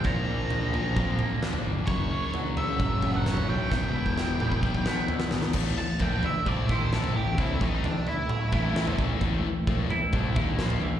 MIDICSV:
0, 0, Header, 1, 8, 480
1, 0, Start_track
1, 0, Tempo, 458365
1, 53, Time_signature, 4, 2, 24, 8
1, 11516, End_track
2, 0, Start_track
2, 0, Title_t, "Lead electric guitar"
2, 0, Program_c, 0, 29
2, 50, Note_on_c, 0, 82, 92
2, 1452, Note_off_c, 0, 82, 0
2, 1950, Note_on_c, 0, 73, 95
2, 2409, Note_off_c, 0, 73, 0
2, 2695, Note_on_c, 0, 76, 91
2, 3306, Note_off_c, 0, 76, 0
2, 3310, Note_on_c, 0, 78, 88
2, 3639, Note_off_c, 0, 78, 0
2, 3660, Note_on_c, 0, 79, 98
2, 5296, Note_off_c, 0, 79, 0
2, 6049, Note_on_c, 0, 81, 89
2, 6286, Note_off_c, 0, 81, 0
2, 6303, Note_on_c, 0, 79, 90
2, 6533, Note_off_c, 0, 79, 0
2, 6551, Note_on_c, 0, 76, 76
2, 6777, Note_off_c, 0, 76, 0
2, 6780, Note_on_c, 0, 74, 78
2, 7011, Note_off_c, 0, 74, 0
2, 7032, Note_on_c, 0, 72, 81
2, 7257, Note_off_c, 0, 72, 0
2, 7262, Note_on_c, 0, 69, 88
2, 7492, Note_off_c, 0, 69, 0
2, 7500, Note_on_c, 0, 67, 80
2, 7729, Note_on_c, 0, 64, 79
2, 7731, Note_off_c, 0, 67, 0
2, 7965, Note_off_c, 0, 64, 0
2, 7981, Note_on_c, 0, 63, 89
2, 8212, Note_off_c, 0, 63, 0
2, 8222, Note_on_c, 0, 62, 88
2, 8452, Note_off_c, 0, 62, 0
2, 8467, Note_on_c, 0, 64, 90
2, 9393, Note_off_c, 0, 64, 0
2, 11516, End_track
3, 0, Start_track
3, 0, Title_t, "Clean electric guitar"
3, 0, Program_c, 1, 27
3, 48, Note_on_c, 1, 46, 78
3, 291, Note_on_c, 1, 62, 57
3, 531, Note_on_c, 1, 53, 72
3, 756, Note_off_c, 1, 46, 0
3, 769, Note_on_c, 1, 46, 67
3, 993, Note_off_c, 1, 53, 0
3, 1006, Note_on_c, 1, 53, 68
3, 1246, Note_on_c, 1, 58, 74
3, 1470, Note_off_c, 1, 62, 0
3, 1483, Note_on_c, 1, 62, 62
3, 1709, Note_off_c, 1, 58, 0
3, 1722, Note_on_c, 1, 58, 66
3, 1965, Note_on_c, 1, 42, 80
3, 1969, Note_off_c, 1, 58, 0
3, 1970, Note_off_c, 1, 62, 0
3, 1972, Note_off_c, 1, 53, 0
3, 1973, Note_off_c, 1, 46, 0
3, 2214, Note_on_c, 1, 61, 66
3, 2450, Note_on_c, 1, 54, 70
3, 2686, Note_on_c, 1, 49, 65
3, 2921, Note_off_c, 1, 54, 0
3, 2934, Note_on_c, 1, 54, 75
3, 3172, Note_off_c, 1, 42, 0
3, 3173, Note_on_c, 1, 57, 77
3, 3399, Note_off_c, 1, 61, 0
3, 3412, Note_on_c, 1, 61, 73
3, 3636, Note_off_c, 1, 57, 0
3, 3649, Note_on_c, 1, 57, 64
3, 3891, Note_off_c, 1, 49, 0
3, 3893, Note_off_c, 1, 57, 0
3, 3895, Note_off_c, 1, 54, 0
3, 3895, Note_off_c, 1, 61, 0
3, 3895, Note_on_c, 1, 52, 76
3, 4131, Note_on_c, 1, 64, 68
3, 4370, Note_on_c, 1, 55, 74
3, 4604, Note_off_c, 1, 52, 0
3, 4617, Note_on_c, 1, 52, 68
3, 4842, Note_off_c, 1, 55, 0
3, 4855, Note_on_c, 1, 55, 66
3, 5098, Note_on_c, 1, 59, 79
3, 5321, Note_off_c, 1, 64, 0
3, 5334, Note_on_c, 1, 64, 69
3, 5570, Note_off_c, 1, 59, 0
3, 5582, Note_on_c, 1, 59, 66
3, 5815, Note_off_c, 1, 64, 0
3, 5816, Note_off_c, 1, 55, 0
3, 5817, Note_off_c, 1, 52, 0
3, 5819, Note_on_c, 1, 45, 74
3, 5820, Note_off_c, 1, 59, 0
3, 6304, Note_on_c, 1, 57, 72
3, 6537, Note_on_c, 1, 64, 73
3, 6777, Note_off_c, 1, 57, 0
3, 6781, Note_on_c, 1, 57, 73
3, 7012, Note_off_c, 1, 64, 0
3, 7016, Note_on_c, 1, 64, 73
3, 7260, Note_on_c, 1, 60, 61
3, 7494, Note_off_c, 1, 57, 0
3, 7498, Note_on_c, 1, 57, 62
3, 7734, Note_off_c, 1, 45, 0
3, 7738, Note_on_c, 1, 45, 78
3, 8212, Note_off_c, 1, 57, 0
3, 8216, Note_on_c, 1, 57, 70
3, 8452, Note_off_c, 1, 64, 0
3, 8457, Note_on_c, 1, 64, 73
3, 8691, Note_off_c, 1, 57, 0
3, 8695, Note_on_c, 1, 57, 75
3, 8933, Note_off_c, 1, 64, 0
3, 8937, Note_on_c, 1, 64, 80
3, 9173, Note_off_c, 1, 60, 0
3, 9177, Note_on_c, 1, 60, 62
3, 9408, Note_off_c, 1, 57, 0
3, 9412, Note_on_c, 1, 57, 64
3, 9646, Note_off_c, 1, 45, 0
3, 9650, Note_on_c, 1, 45, 77
3, 10127, Note_off_c, 1, 57, 0
3, 10131, Note_on_c, 1, 57, 72
3, 10365, Note_off_c, 1, 64, 0
3, 10369, Note_on_c, 1, 64, 79
3, 10611, Note_off_c, 1, 57, 0
3, 10615, Note_on_c, 1, 57, 72
3, 10850, Note_off_c, 1, 64, 0
3, 10854, Note_on_c, 1, 64, 79
3, 11088, Note_off_c, 1, 60, 0
3, 11092, Note_on_c, 1, 60, 60
3, 11334, Note_off_c, 1, 57, 0
3, 11338, Note_on_c, 1, 57, 60
3, 11516, Note_off_c, 1, 45, 0
3, 11516, Note_off_c, 1, 57, 0
3, 11516, Note_off_c, 1, 60, 0
3, 11516, Note_off_c, 1, 64, 0
3, 11516, End_track
4, 0, Start_track
4, 0, Title_t, "Distorted electric guitar"
4, 0, Program_c, 2, 30
4, 40, Note_on_c, 2, 46, 81
4, 58, Note_on_c, 2, 53, 97
4, 73, Note_on_c, 2, 58, 82
4, 754, Note_off_c, 2, 46, 0
4, 754, Note_off_c, 2, 58, 0
4, 763, Note_off_c, 2, 53, 0
4, 766, Note_on_c, 2, 58, 78
4, 780, Note_on_c, 2, 53, 77
4, 792, Note_on_c, 2, 46, 67
4, 1958, Note_off_c, 2, 58, 0
4, 1963, Note_on_c, 2, 42, 86
4, 1964, Note_off_c, 2, 53, 0
4, 1970, Note_off_c, 2, 46, 0
4, 1979, Note_on_c, 2, 49, 88
4, 1990, Note_on_c, 2, 54, 96
4, 2675, Note_off_c, 2, 42, 0
4, 2676, Note_off_c, 2, 54, 0
4, 2684, Note_off_c, 2, 49, 0
4, 2688, Note_on_c, 2, 54, 74
4, 2701, Note_on_c, 2, 49, 73
4, 2716, Note_on_c, 2, 42, 66
4, 3878, Note_off_c, 2, 54, 0
4, 3879, Note_off_c, 2, 42, 0
4, 3884, Note_on_c, 2, 40, 88
4, 3885, Note_off_c, 2, 49, 0
4, 3897, Note_on_c, 2, 47, 87
4, 3908, Note_on_c, 2, 52, 89
4, 4596, Note_off_c, 2, 40, 0
4, 4599, Note_off_c, 2, 52, 0
4, 4602, Note_off_c, 2, 47, 0
4, 4611, Note_on_c, 2, 52, 82
4, 4623, Note_on_c, 2, 47, 75
4, 4642, Note_on_c, 2, 40, 60
4, 5796, Note_off_c, 2, 52, 0
4, 5800, Note_off_c, 2, 47, 0
4, 5804, Note_on_c, 2, 45, 80
4, 5809, Note_on_c, 2, 52, 90
4, 5815, Note_off_c, 2, 40, 0
4, 5817, Note_on_c, 2, 57, 97
4, 6040, Note_off_c, 2, 45, 0
4, 6046, Note_off_c, 2, 52, 0
4, 6050, Note_off_c, 2, 57, 0
4, 6286, Note_on_c, 2, 46, 82
4, 6291, Note_on_c, 2, 53, 89
4, 6297, Note_on_c, 2, 58, 105
4, 6524, Note_off_c, 2, 46, 0
4, 6527, Note_off_c, 2, 53, 0
4, 6530, Note_off_c, 2, 58, 0
4, 6766, Note_on_c, 2, 48, 83
4, 6769, Note_on_c, 2, 55, 87
4, 6777, Note_on_c, 2, 60, 104
4, 7000, Note_off_c, 2, 48, 0
4, 7004, Note_on_c, 2, 51, 90
4, 7006, Note_off_c, 2, 55, 0
4, 7009, Note_off_c, 2, 60, 0
4, 7010, Note_on_c, 2, 58, 102
4, 7016, Note_on_c, 2, 63, 111
4, 7243, Note_off_c, 2, 51, 0
4, 7246, Note_off_c, 2, 58, 0
4, 7249, Note_off_c, 2, 63, 0
4, 7249, Note_on_c, 2, 46, 88
4, 7260, Note_on_c, 2, 53, 110
4, 7260, Note_on_c, 2, 58, 105
4, 7486, Note_off_c, 2, 46, 0
4, 7491, Note_off_c, 2, 53, 0
4, 7491, Note_off_c, 2, 58, 0
4, 7498, Note_on_c, 2, 45, 59
4, 7501, Note_on_c, 2, 52, 69
4, 7689, Note_off_c, 2, 45, 0
4, 7691, Note_off_c, 2, 52, 0
4, 7734, Note_on_c, 2, 48, 89
4, 7736, Note_on_c, 2, 55, 83
4, 7744, Note_on_c, 2, 60, 103
4, 7968, Note_off_c, 2, 48, 0
4, 7969, Note_off_c, 2, 55, 0
4, 7973, Note_off_c, 2, 60, 0
4, 7973, Note_on_c, 2, 45, 90
4, 7975, Note_on_c, 2, 52, 94
4, 7979, Note_on_c, 2, 57, 104
4, 8207, Note_off_c, 2, 45, 0
4, 8208, Note_off_c, 2, 52, 0
4, 8211, Note_off_c, 2, 57, 0
4, 8931, Note_on_c, 2, 45, 94
4, 8933, Note_on_c, 2, 52, 101
4, 8938, Note_on_c, 2, 57, 106
4, 9406, Note_off_c, 2, 45, 0
4, 9407, Note_off_c, 2, 52, 0
4, 9409, Note_off_c, 2, 57, 0
4, 9418, Note_on_c, 2, 46, 77
4, 9422, Note_on_c, 2, 53, 85
4, 9427, Note_on_c, 2, 58, 96
4, 9649, Note_off_c, 2, 46, 0
4, 9652, Note_off_c, 2, 53, 0
4, 9654, Note_off_c, 2, 58, 0
4, 9656, Note_on_c, 2, 45, 82
4, 9657, Note_on_c, 2, 52, 93
4, 9665, Note_on_c, 2, 57, 102
4, 9877, Note_off_c, 2, 45, 0
4, 9889, Note_off_c, 2, 52, 0
4, 9893, Note_off_c, 2, 57, 0
4, 10127, Note_on_c, 2, 46, 98
4, 10135, Note_on_c, 2, 53, 92
4, 10138, Note_on_c, 2, 58, 101
4, 10364, Note_off_c, 2, 46, 0
4, 10368, Note_off_c, 2, 53, 0
4, 10369, Note_off_c, 2, 58, 0
4, 10604, Note_on_c, 2, 48, 93
4, 10613, Note_on_c, 2, 55, 99
4, 10614, Note_on_c, 2, 60, 95
4, 10842, Note_off_c, 2, 48, 0
4, 10846, Note_off_c, 2, 55, 0
4, 10847, Note_off_c, 2, 60, 0
4, 10850, Note_on_c, 2, 51, 91
4, 10858, Note_on_c, 2, 58, 98
4, 10864, Note_on_c, 2, 63, 94
4, 11081, Note_off_c, 2, 58, 0
4, 11083, Note_off_c, 2, 51, 0
4, 11087, Note_on_c, 2, 46, 95
4, 11089, Note_off_c, 2, 63, 0
4, 11094, Note_on_c, 2, 53, 86
4, 11094, Note_on_c, 2, 58, 99
4, 11323, Note_off_c, 2, 46, 0
4, 11327, Note_off_c, 2, 53, 0
4, 11327, Note_off_c, 2, 58, 0
4, 11332, Note_on_c, 2, 52, 63
4, 11333, Note_on_c, 2, 45, 62
4, 11516, Note_off_c, 2, 45, 0
4, 11516, Note_off_c, 2, 52, 0
4, 11516, End_track
5, 0, Start_track
5, 0, Title_t, "Fingered electric bass"
5, 0, Program_c, 3, 33
5, 48, Note_on_c, 3, 34, 86
5, 269, Note_off_c, 3, 34, 0
5, 309, Note_on_c, 3, 34, 77
5, 981, Note_off_c, 3, 34, 0
5, 1008, Note_on_c, 3, 41, 93
5, 1230, Note_off_c, 3, 41, 0
5, 1731, Note_on_c, 3, 31, 82
5, 1951, Note_off_c, 3, 31, 0
5, 1965, Note_on_c, 3, 30, 86
5, 2188, Note_off_c, 3, 30, 0
5, 2925, Note_on_c, 3, 30, 104
5, 3609, Note_off_c, 3, 30, 0
5, 3659, Note_on_c, 3, 35, 87
5, 3876, Note_off_c, 3, 35, 0
5, 3890, Note_on_c, 3, 28, 102
5, 4111, Note_off_c, 3, 28, 0
5, 4137, Note_on_c, 3, 28, 83
5, 4815, Note_off_c, 3, 28, 0
5, 4844, Note_on_c, 3, 35, 98
5, 5068, Note_off_c, 3, 35, 0
5, 5573, Note_on_c, 3, 32, 78
5, 5793, Note_off_c, 3, 32, 0
5, 5806, Note_on_c, 3, 33, 85
5, 6034, Note_off_c, 3, 33, 0
5, 6288, Note_on_c, 3, 34, 85
5, 6515, Note_off_c, 3, 34, 0
5, 6763, Note_on_c, 3, 36, 95
5, 6993, Note_off_c, 3, 36, 0
5, 7004, Note_on_c, 3, 39, 85
5, 7233, Note_off_c, 3, 39, 0
5, 7259, Note_on_c, 3, 34, 93
5, 7481, Note_off_c, 3, 34, 0
5, 7493, Note_on_c, 3, 33, 77
5, 7718, Note_off_c, 3, 33, 0
5, 7723, Note_on_c, 3, 36, 78
5, 7953, Note_off_c, 3, 36, 0
5, 7968, Note_on_c, 3, 33, 87
5, 8195, Note_off_c, 3, 33, 0
5, 8923, Note_on_c, 3, 33, 93
5, 9375, Note_off_c, 3, 33, 0
5, 9403, Note_on_c, 3, 34, 83
5, 9632, Note_off_c, 3, 34, 0
5, 9647, Note_on_c, 3, 33, 83
5, 9874, Note_off_c, 3, 33, 0
5, 10129, Note_on_c, 3, 34, 90
5, 10355, Note_off_c, 3, 34, 0
5, 10610, Note_on_c, 3, 36, 92
5, 10835, Note_off_c, 3, 36, 0
5, 10853, Note_on_c, 3, 39, 88
5, 11077, Note_off_c, 3, 39, 0
5, 11097, Note_on_c, 3, 34, 91
5, 11319, Note_off_c, 3, 34, 0
5, 11331, Note_on_c, 3, 33, 79
5, 11516, Note_off_c, 3, 33, 0
5, 11516, End_track
6, 0, Start_track
6, 0, Title_t, "Muted distorted electric guitar strokes"
6, 6052, Note_on_c, 9, 29, 55
6, 6157, Note_off_c, 9, 29, 0
6, 6534, Note_on_c, 9, 29, 55
6, 6638, Note_off_c, 9, 29, 0
6, 9890, Note_on_c, 9, 29, 62
6, 9994, Note_off_c, 9, 29, 0
6, 10380, Note_on_c, 9, 29, 52
6, 10485, Note_off_c, 9, 29, 0
6, 11516, End_track
7, 0, Start_track
7, 0, Title_t, "Muted fingered electric bass strokes"
7, 6049, Note_on_c, 9, 29, 41
7, 6153, Note_off_c, 9, 29, 0
7, 6531, Note_on_c, 9, 29, 45
7, 6636, Note_off_c, 9, 29, 0
7, 9896, Note_on_c, 9, 29, 45
7, 10000, Note_off_c, 9, 29, 0
7, 10371, Note_on_c, 9, 29, 41
7, 10476, Note_off_c, 9, 29, 0
7, 11516, End_track
8, 0, Start_track
8, 0, Title_t, "Drums"
8, 43, Note_on_c, 9, 43, 76
8, 50, Note_on_c, 9, 36, 90
8, 148, Note_off_c, 9, 43, 0
8, 155, Note_off_c, 9, 36, 0
8, 528, Note_on_c, 9, 43, 77
8, 633, Note_off_c, 9, 43, 0
8, 773, Note_on_c, 9, 43, 69
8, 878, Note_off_c, 9, 43, 0
8, 1011, Note_on_c, 9, 36, 100
8, 1012, Note_on_c, 9, 47, 67
8, 1116, Note_off_c, 9, 36, 0
8, 1117, Note_off_c, 9, 47, 0
8, 1243, Note_on_c, 9, 43, 74
8, 1243, Note_on_c, 9, 47, 69
8, 1348, Note_off_c, 9, 43, 0
8, 1348, Note_off_c, 9, 47, 0
8, 1493, Note_on_c, 9, 38, 80
8, 1598, Note_off_c, 9, 38, 0
8, 1603, Note_on_c, 9, 43, 83
8, 1708, Note_off_c, 9, 43, 0
8, 1958, Note_on_c, 9, 43, 86
8, 1965, Note_on_c, 9, 36, 97
8, 2063, Note_off_c, 9, 43, 0
8, 2070, Note_off_c, 9, 36, 0
8, 2447, Note_on_c, 9, 43, 83
8, 2552, Note_off_c, 9, 43, 0
8, 2692, Note_on_c, 9, 43, 75
8, 2796, Note_off_c, 9, 43, 0
8, 2929, Note_on_c, 9, 36, 98
8, 2930, Note_on_c, 9, 47, 68
8, 3034, Note_off_c, 9, 36, 0
8, 3035, Note_off_c, 9, 47, 0
8, 3167, Note_on_c, 9, 43, 77
8, 3167, Note_on_c, 9, 47, 72
8, 3272, Note_off_c, 9, 43, 0
8, 3272, Note_off_c, 9, 47, 0
8, 3416, Note_on_c, 9, 38, 80
8, 3521, Note_off_c, 9, 38, 0
8, 3529, Note_on_c, 9, 43, 87
8, 3633, Note_off_c, 9, 43, 0
8, 3891, Note_on_c, 9, 36, 100
8, 3892, Note_on_c, 9, 38, 56
8, 3995, Note_off_c, 9, 36, 0
8, 3996, Note_off_c, 9, 38, 0
8, 4013, Note_on_c, 9, 48, 44
8, 4118, Note_off_c, 9, 48, 0
8, 4251, Note_on_c, 9, 36, 56
8, 4355, Note_off_c, 9, 36, 0
8, 4373, Note_on_c, 9, 38, 64
8, 4478, Note_off_c, 9, 38, 0
8, 4609, Note_on_c, 9, 47, 70
8, 4714, Note_off_c, 9, 47, 0
8, 4730, Note_on_c, 9, 36, 61
8, 4834, Note_off_c, 9, 36, 0
8, 4848, Note_on_c, 9, 36, 97
8, 4952, Note_off_c, 9, 36, 0
8, 4969, Note_on_c, 9, 36, 69
8, 5074, Note_off_c, 9, 36, 0
8, 5087, Note_on_c, 9, 38, 85
8, 5191, Note_off_c, 9, 38, 0
8, 5324, Note_on_c, 9, 43, 88
8, 5429, Note_off_c, 9, 43, 0
8, 5441, Note_on_c, 9, 38, 84
8, 5546, Note_off_c, 9, 38, 0
8, 5560, Note_on_c, 9, 38, 84
8, 5665, Note_off_c, 9, 38, 0
8, 5676, Note_on_c, 9, 38, 72
8, 5780, Note_off_c, 9, 38, 0
8, 5794, Note_on_c, 9, 43, 75
8, 5794, Note_on_c, 9, 49, 96
8, 5803, Note_on_c, 9, 36, 85
8, 5898, Note_off_c, 9, 43, 0
8, 5898, Note_off_c, 9, 49, 0
8, 5908, Note_off_c, 9, 36, 0
8, 6278, Note_on_c, 9, 43, 85
8, 6284, Note_on_c, 9, 36, 94
8, 6383, Note_off_c, 9, 43, 0
8, 6389, Note_off_c, 9, 36, 0
8, 6522, Note_on_c, 9, 43, 78
8, 6627, Note_off_c, 9, 43, 0
8, 6768, Note_on_c, 9, 47, 73
8, 6769, Note_on_c, 9, 36, 88
8, 6872, Note_off_c, 9, 47, 0
8, 6874, Note_off_c, 9, 36, 0
8, 7009, Note_on_c, 9, 36, 93
8, 7010, Note_on_c, 9, 43, 82
8, 7010, Note_on_c, 9, 47, 75
8, 7114, Note_off_c, 9, 36, 0
8, 7114, Note_off_c, 9, 43, 0
8, 7114, Note_off_c, 9, 47, 0
8, 7253, Note_on_c, 9, 38, 75
8, 7358, Note_off_c, 9, 38, 0
8, 7369, Note_on_c, 9, 43, 88
8, 7473, Note_off_c, 9, 43, 0
8, 7730, Note_on_c, 9, 36, 100
8, 7732, Note_on_c, 9, 43, 79
8, 7835, Note_off_c, 9, 36, 0
8, 7837, Note_off_c, 9, 43, 0
8, 7970, Note_on_c, 9, 36, 93
8, 8075, Note_off_c, 9, 36, 0
8, 8212, Note_on_c, 9, 43, 80
8, 8316, Note_off_c, 9, 43, 0
8, 8447, Note_on_c, 9, 43, 76
8, 8552, Note_off_c, 9, 43, 0
8, 8686, Note_on_c, 9, 47, 70
8, 8790, Note_off_c, 9, 47, 0
8, 8926, Note_on_c, 9, 43, 74
8, 8926, Note_on_c, 9, 47, 70
8, 8929, Note_on_c, 9, 36, 86
8, 9030, Note_off_c, 9, 43, 0
8, 9030, Note_off_c, 9, 47, 0
8, 9034, Note_off_c, 9, 36, 0
8, 9176, Note_on_c, 9, 38, 80
8, 9280, Note_off_c, 9, 38, 0
8, 9292, Note_on_c, 9, 43, 79
8, 9397, Note_off_c, 9, 43, 0
8, 9410, Note_on_c, 9, 36, 98
8, 9514, Note_off_c, 9, 36, 0
8, 9645, Note_on_c, 9, 43, 75
8, 9648, Note_on_c, 9, 36, 93
8, 9749, Note_off_c, 9, 43, 0
8, 9753, Note_off_c, 9, 36, 0
8, 10130, Note_on_c, 9, 36, 105
8, 10132, Note_on_c, 9, 43, 83
8, 10235, Note_off_c, 9, 36, 0
8, 10236, Note_off_c, 9, 43, 0
8, 10371, Note_on_c, 9, 43, 81
8, 10476, Note_off_c, 9, 43, 0
8, 10605, Note_on_c, 9, 47, 74
8, 10610, Note_on_c, 9, 36, 99
8, 10710, Note_off_c, 9, 47, 0
8, 10715, Note_off_c, 9, 36, 0
8, 10851, Note_on_c, 9, 36, 101
8, 10854, Note_on_c, 9, 43, 80
8, 10854, Note_on_c, 9, 47, 76
8, 10956, Note_off_c, 9, 36, 0
8, 10959, Note_off_c, 9, 43, 0
8, 10959, Note_off_c, 9, 47, 0
8, 11087, Note_on_c, 9, 38, 78
8, 11192, Note_off_c, 9, 38, 0
8, 11207, Note_on_c, 9, 43, 85
8, 11312, Note_off_c, 9, 43, 0
8, 11516, End_track
0, 0, End_of_file